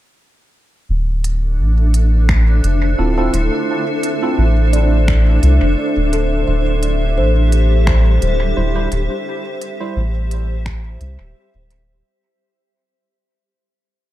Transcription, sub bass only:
0.89 D1
1.59 A1
2.64 F1
2.98 D1
3.33 D1
4.38 A1
5.43 C2
5.62 F1
5.96 D1
6.47 D1
7.17 A1
8.22 D1
8.57 D1
8.92 D1
9.96 A1
11.01 C2
11.20 D1
11.54 D1

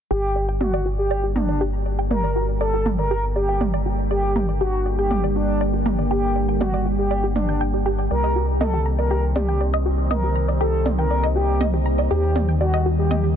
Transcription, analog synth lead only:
0.11 G4
0.61 F#4
0.99 G4
1.36 D4
2.11 A#4
2.61 A4
2.99 A#4
3.36 G4
4.11 G4
4.61 F#4
4.99 G4
5.36 D4
6.11 G4
6.61 F#4
6.99 G4
7.36 D4
8.11 A#4
8.61 A4
8.99 A#4
9.36 G4
10.11 A#4
10.61 A4
10.99 A#4
11.36 G4
12.11 G4
12.61 F#4
12.99 G4

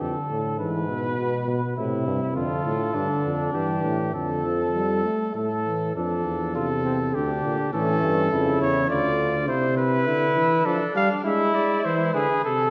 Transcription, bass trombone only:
0.01 F2
0.30 A2
0.60 G#2
1.19 B2
1.48 B2
1.77 A2
2.07 G2
2.35 F2
2.65 A2
2.95 G2
3.24 F2
3.54 G2
3.83 A2
4.13 F2
5.35 A2
5.96 F2
6.26 E2
7.15 D2
7.45 A#2
7.74 A2
8.03 G2
8.32 F2
8.61 E2
8.90 D2

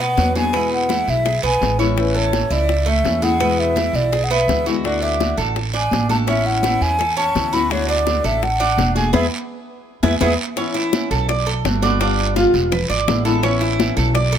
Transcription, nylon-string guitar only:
0.17 F#3 B3 D4 F#4
0.36 F#3 B3 D4 F#4
0.54 B2 E3 G#3 B3 E4
0.89 E3 G#3 B3 E4
1.25 muted nylon-string guitar stroke
1.61 E3 G#3 B3 E4
1.79 E3 G#3 B3 E4
1.96 E3 A3 C#4 E4
2.32 E3 A3 C#4 E4
2.69 muted nylon-string guitar stroke
3.04 E3 A3 C#4 E4
3.22 A3 C#4 E4
3.40 B2 E3 G#3 B3 E4
3.76 E3 G#3 B3 E4
4.13 muted nylon-string guitar stroke
4.48 E3 G#3 B3 E4
4.67 E3 G#3 B3 E4
4.84 D3 A3 D4 F#4
5.20 D3 A3 D4 F#4
5.56 muted nylon-string guitar stroke
5.91 D3 A3 D4 F#4
6.09 A3 D4 F#4
6.27 E3 B3 C#4 E4
6.63 E3 B3 C#4 E4
6.99 muted nylon-string guitar stroke
7.35 E3 B3 C#4 E4
7.53 B3 C#4 E4
7.71 D3 A3 D4 F#4
8.06 D3 A3 D4 F#4
8.42 muted nylon-string guitar stroke
8.78 D3 A3 D4 F#4
8.95 A3 D4 F#4
9.13 G#3 B3 E4
10.03 G#3 B3 E4
10.21 G#3 B3 E4
10.56 E3 B3 C#4 E4
10.93 E3 B3 C#4 E4
11.29 muted nylon-string guitar stroke
11.64 D3 A3 B3 F#4
11.82 D3 A3 B3 F#4
12.00 G3 B3 F4
12.36 G3 B3 F4
12.72 muted nylon-string guitar stroke
13.07 D3 G#3 B3 E4
13.25 D3 G#3 B3 E4
13.43 E3 B3 C#4 E4
13.79 E3 B3 C#4 E4
14.15 muted nylon-string guitar stroke

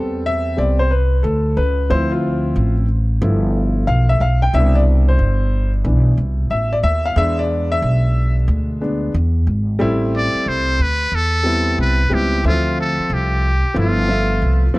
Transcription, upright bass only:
Already playing: E2
0.58 C2
1.24 D2
1.57 C#2
1.90 D2
2.56 A1
3.22 G1
3.88 B1
4.20 B1
4.54 C2
5.19 G1
5.85 B1
6.18 C2
6.50 A1
6.83 D#2
7.16 E2
7.82 B1
8.48 D2
9.14 E2
9.47 G#1
9.80 A1
10.34 muted upright bass stroke
10.46 C2
10.79 D2
11.12 E2
11.78 C2
12.11 C#2
12.44 D2
12.99 muted upright bass stroke
13.10 C2
13.65 muted upright bass stroke
13.76 G1
14.42 C2
14.75 B1

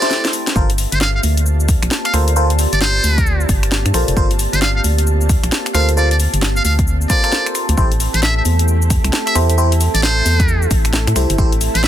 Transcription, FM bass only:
0.56 G1
0.92 G1
1.23 D2
1.83 A#1
2.14 D2
2.73 G1
3.04 D2
3.49 G1
3.86 G2
3.94 A#1
4.08 F1
4.17 G1
4.53 G1
4.84 D2
5.43 A#1
5.74 D2
6.34 G1
6.65 D2
7.69 D2
7.78 A1
8.14 A1
8.45 E2
9.04 C2
9.35 E2
9.94 A1
10.26 E2
10.71 A1
11.07 A2
11.16 C2
11.30 G1
11.38 A1
11.75 A1

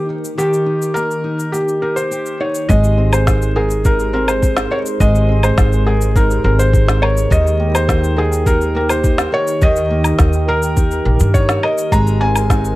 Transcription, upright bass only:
2.69 G#1
5.00 G#1
5.58 G#1
6.44 G#1
7.31 D#2
9.62 D#2
10.19 D#2
11.05 A#1
11.20 G2
11.92 G#1

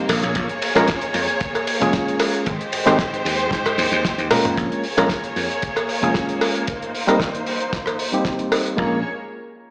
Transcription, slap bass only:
0.09 A#1
0.23 A#1
0.36 A#1
0.75 A#1
1.14 F2
1.81 F1
2.46 G#1
2.87 G#1
3.25 D#2
3.51 G#2
3.78 D#2
3.92 D#2
4.18 D#2
4.57 A#1
4.98 A#1
5.36 F2
6.03 F1
8.78 A#1

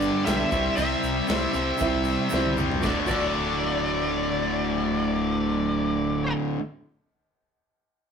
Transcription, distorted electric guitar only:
Already playing: G2 D3 G3
0.24 G2 D3 G3
0.51 C3 G3 C4
0.77 C3 G3 C4
1.28 C3 G3 C4
1.54 C3 G3 C4
1.81 C3 G3 C4
2.33 C3 G3 C4
2.57 C3 G3 C4
2.82 D2 A2 D3 A3 F#4
3.08 D2 A2 D3 A3 F#4

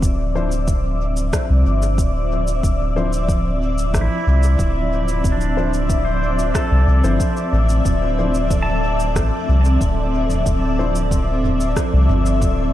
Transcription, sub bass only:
0.02 D1
1.50 C2
1.66 G1
1.98 D1
2.63 D1
3.94 A1
4.27 C2
4.59 D1
5.24 D1
6.71 C2
6.87 C2
7.04 G1
7.53 A1
7.85 D1
9.16 A1
9.49 C2
9.81 D1
10.46 D1
11.93 C2
12.09 G1
12.42 D1

